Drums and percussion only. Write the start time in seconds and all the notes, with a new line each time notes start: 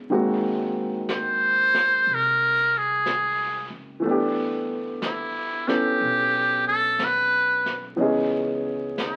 0.11 brush sweep
1.09 brush sweep, snare, hi-hat pedal
1.74 snare
2.07 brush sweep
3.06 brush sweep, snare, hi-hat pedal
4.04 brush sweep
5.02 brush sweep, snare, hi-hat pedal
5.68 snare
6.00 brush sweep
6.99 brush sweep, snare, hi-hat pedal
7.66 snare
7.99 brush sweep
8.98 brush sweep, snare, hi-hat pedal